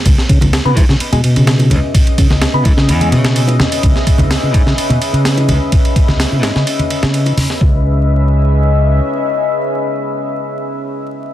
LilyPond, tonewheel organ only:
\new Staff \with { instrumentName = "Tonewheel organ" } { \clef bass \time 4/4 \key cis \minor \tempo 4 = 127 r8 cis16 r8 b16 e16 r8 gis16 b,4 cis16 r16 | r8 cis16 r8 b16 e16 r8 gis16 b,4 cis16 r16 | r1 | r1 |
r1 | r1 | }